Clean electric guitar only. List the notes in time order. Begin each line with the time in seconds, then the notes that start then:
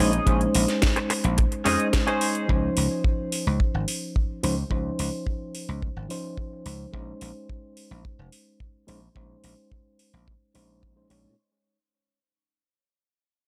Already playing: C#4 D#4 G#4 D#5
0.96 muted clean electric guitar stroke
1.10 muted clean electric guitar stroke
1.24 muted clean electric guitar stroke
1.38 muted clean electric guitar stroke
1.65 C#4 D#4 G#4 D#5
2.07 C#4 D#4 G#4 C5